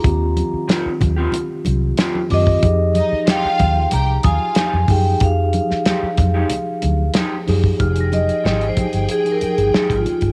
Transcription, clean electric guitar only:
X:1
M:4/4
L:1/16
Q:1/4=93
K:Fm
V:1 name="Clean electric guitar"
z4 [CFG] z2 [CFG] z4 [CFG] z3 | z4 [A,EG] z6 z [A,EG] z3 | z4 [A,EG] z2 [A,EG] z4 [A,EG] z3 | z4 [A,EG] z6 z [A,EG] z3 |]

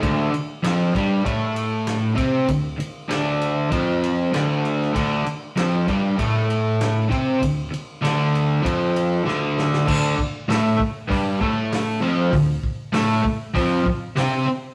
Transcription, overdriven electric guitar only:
X:1
M:4/4
L:1/8
Q:1/4=98
K:Dm
V:1 name="Overdriven electric guitar" clef=bass
[D,,D,] z [F,,F,] [G,,G,] [A,,A,]3 [C,C] | D,, z [D,,D,]2 [F,,F,]2 [D,,D,]2 | [D,,D,] z [F,,F,] [G,,G,] [A,,A,]3 [C,C] | D,, z [D,,D,]2 [F,,F,]2 [D,,D,]2 |
[D,,D,] z [A,,A,] z [G,,G,] [A,,A,]2 [F,,F,] | D,, z [A,,A,] z [F,,F,] z [C,C] z |]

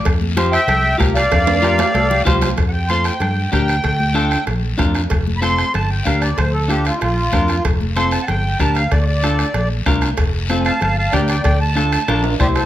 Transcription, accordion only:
X:1
M:4/4
L:1/8
Q:1/4=189
K:F
V:1 name="Accordion"
z3 [eg]3 z [df]- | [df]6 z2 | z [_g=g] c' g3 g2- | g4 z4 |
z2 [=bc']2 a g f d | c A G F [EF]4 | z2 c' a [_g=g]2 a f | d [_d=d]4 z3 |
z3 [f_a=a] [fa] [fa] [dg] [dg] | [dg] a4 z [Gd] [Ac] |]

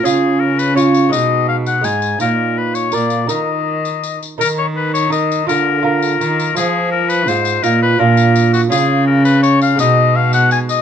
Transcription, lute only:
X:1
M:3/4
L:1/8
Q:1/4=167
K:Bbphr
V:1 name="Lute"
[DF]4 [DF]2 | [A,E]4 [A,E]2 | [EF]4 [FB]2 | [EB]6 |
[EB]4 [EB]2 | [FB]2 [FB]4 | F4 F2 | [EF]2 [=DF]4 |
[DF]6 | [A,E]6 |]
V:2 name="Lute" clef=bass
D,6 | C,4 A,,2 | B,,4 B,,2 | E,4- E, z |
E,6 | =D,4 E,2 | F,4 A,,2 | B,,2 B,,4 |
D,6 | C,6 |]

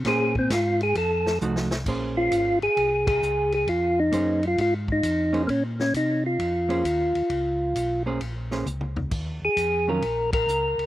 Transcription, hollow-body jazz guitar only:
X:1
M:4/4
L:1/8
Q:"Swing" 1/4=132
K:Bbm
V:1 name="Hollow-body jazz guitar"
[B,DAc] z4 z [F,=A,EG] z | [B,DAc]3 z4 z | z2 [B,DAc] z4 [B,DAc] | z4 z [B,DAc] z2 |
z3 [B,DAc] z [B,DAc] z2 | z3 [E,G,DF] z4 |]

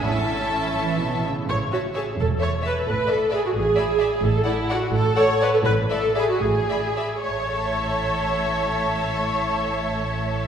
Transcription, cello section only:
X:1
M:6/8
L:1/8
Q:3/8=82
K:A
V:1 name="Cello section" clef=bass
A,,3 E, B,, C, | A,,3 E,,3 | A,,3 A,,3 | A,,3 A,,3 |
A,,3 A,,3 | A,,6- | A,,6 |]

